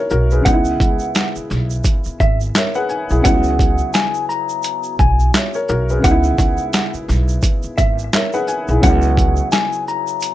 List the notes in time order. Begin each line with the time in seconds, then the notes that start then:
Already playing: C#3 F#3 B3 E4 A#4 C#5 E5
0.10 B1 F#4 A#4, shaker
0.31 G#4 B4, shaker
0.41 C#3 G#3 B3 F#5
0.46 C#2 D#4, kick, closed hi-hat, shaker
0.53 E4
0.65 shaker
0.80 C#2, kick, closed hi-hat, shaker
0.99 shaker
1.15 snare, clap, closed hi-hat, shaker
1.36 muted upright bass stroke, shaker
1.50 B1, snare, shaker
1.70 shaker
1.84 kick, closed hi-hat, shaker
2.04 muted upright bass stroke, shaker
2.20 G#1 E5, kick, shaker
2.41 shaker
2.55 A#4 C#5 E5, snare, clap, closed hi-hat, shaker
2.74 G#4 B4 F#5, shaker
2.89 G#5, shaker
3.10 B1 E4 G#4, shaker
3.21 C#2 C#3 F#3 B3 F#5, kick, closed hi-hat
3.26 E4, shaker
3.44 shaker
3.59 kick, closed hi-hat, shaker
3.78 shaker
3.94 G#5, snare, clap, closed hi-hat, shaker
4.14 shaker
4.29 A#5, shaker
4.49 shaker
4.63 closed hi-hat, shaker
4.83 shaker
4.99 B1 G#5, kick, shaker
5.20 shaker
5.34 C#5 E5, snare, clap, closed hi-hat, shaker
5.54 A#4 C#5, shaker
5.69 B1 F#4 A#4, shaker
5.89 G#4 B4, shaker
5.99 C#3 G#3 B3
6.04 C#2 D#4 F#5, kick, closed hi-hat, shaker
6.11 E4
6.24 shaker
6.38 C#2, kick, closed hi-hat, shaker
6.58 shaker
6.73 snare, clap, closed hi-hat, shaker
6.94 muted upright bass stroke, shaker
7.08 B1, snare, shaker
7.29 shaker
7.42 kick, closed hi-hat, shaker
7.63 muted upright bass stroke, shaker
7.78 G#1 E5, kick, closed hi-hat, shaker
7.99 shaker
8.13 A#4 C#5 E5, snare, clap, closed hi-hat, shaker
8.33 G#4 B4 F#5, shaker
8.48 G#5, shaker
8.68 B1 E4 G#4, shaker
8.80 C#2 C#3 F#3 B3 F#5, kick, closed hi-hat, shaker
8.86 E4
9.02 shaker
9.17 kick, closed hi-hat, shaker
9.36 shaker
9.52 G#5, snare, clap, closed hi-hat, shaker
9.72 shaker
9.88 A#5, shaker
10.07 shaker
10.21 closed hi-hat, shaker